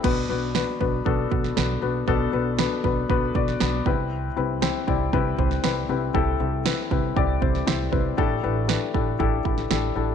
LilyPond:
<<
  \new Staff \with { instrumentName = "Upright piano" } { \time 4/4 \key c \lydian \tempo 4 = 118 <b d' fis' b'>8 <b d' fis' b'>8 <b d' fis' b'>8 <b d' fis' b'>8 <b d' fis' a'>8 <b d' fis' b'>8 <b d' fis' b'>8 <b d' fis' b'>8 | <b d' fis' a'>8 <b d' fis' b'>8 <b d' fis' b'>8 <b d' fis' b'>8 <b d' fis' b'>8 <b d' fis' d''>8 <b d' fis' b'>8 <c' e' g' b'>8~ | <c' e' g' b'>8 <c' e' g' b'>8 <c' e' g' c''>8 <c' e' g' d''>8 <c' e' g' b'>8 <c' e' g' c''>8 <c' e' g' b'>8 <c' e' g' b'>8 | <c' e' g' a'>8 <c' e' g' a'>8 <c' e' g' b'>8 <c' e' g' b'>8 <c' e' g' d''>8 <c' e' g' c''>8 <c' e' g' c''>8 <c' e' g' b'>8 |
<d' e' g' a'>8 <d' e' g' b'>8 <d' e' g' b'>8 <d' e' g' a'>8 <d' e' g' a'>8 <d' e' g' a'>8 <d' e' g' a'>8 <d' e' g' a'>8 | }
  \new Staff \with { instrumentName = "Upright piano" } { \clef bass \time 4/4 \key c \lydian b,4. r2 r8 | b,4. r2 c8~ | c4 r2 r8 c8~ | c4 r2. |
a,4. r2 r8 | }
  \new Staff \with { instrumentName = "Upright bass" } { \clef bass \time 4/4 \key c \lydian b,,8 b,,8. r16 b,,8 b,,8 b,,8 b,,8 b,,8 | b,,8 b,,8. r16 b,,8 b,,8 b,,8 b,,8 c,8~ | c,8 c,8. r16 c,8 c,8 c,8 c,8 c,8 | c,8 c,8. r16 c,8 c,8 c,8 c,8 c,8 |
a,,8 a,,8. r16 a,,8 a,,8 a,,8 a,,8 a,,8 | }
  \new DrumStaff \with { instrumentName = "Drums" } \drummode { \time 4/4 <cymc bd>4 sn8 bd8 bd8 bd16 sn16 sn4 | bd4 sn8 bd8 bd8 bd16 sn16 sn8 bd8 | r4 sn8 bd8 bd8 bd16 sn16 sn4 | bd4 sn8 bd8 bd8 bd16 sn16 sn8 bd8 |
bd4 sn8 bd8 bd8 bd16 sn16 sn4 | }
>>